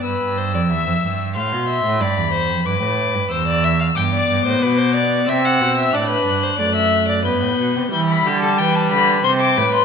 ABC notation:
X:1
M:3/4
L:1/16
Q:1/4=92
K:C
V:1 name="Violin"
e'8 c'4 | b4 d'4 e'4 | d'4 d'4 e'4 | ^f'8 g'4 |
[K:Em] g' b2 a g a b2 c' d'2 c' |]
V:2 name="Violin"
B2 c d e4 f2 e2 | d2 c2 B4 c d e f | g d2 c B c d2 e ^f2 e | d B2 c d e2 d B4 |
[K:Em] E2 G A B4 c2 B2 |]
V:3 name="Viola"
z12 | z12 | B,8 C4 | D4 A,4 B,4 |
[K:Em] G,12 |]
V:4 name="Cello" clef=bass
G,, G,,2 F,, E,, F,, G,,2 A,, B,,2 A,, | G,, E,,2 F,, G,, A,,2 G,, E,,4 | G,,2 G,, A,, B,,4 C,2 B,,2 | A,,2 G,,2 ^F,,4 G,, A,, B,, C, |
[K:Em] E,2 D,2 E,2 D,2 C,2 A,,2 |]